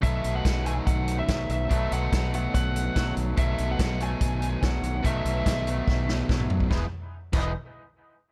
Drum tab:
CC |----------------|----------------|----------------|----------------|
HH |x-x-x-x-x-x-x-x-|x-x-x-x-x-x-x-x-|x-x-x-x-x-x-x-x-|x-x-x-x---------|
SD |----o-------o---|----o-------o---|----o-------o---|----o---o-o-o---|
T2 |----------------|----------------|----------------|-------------o--|
FT |----------------|----------------|----------------|--------------o-|
BD |o---o---o---o---|o---o---o---o---|o---o---o---o---|o---o---o---o--o|

CC |------x---------|
HH |----------------|
SD |o---------------|
T2 |----------------|
FT |----------------|
BD |o-----o---------|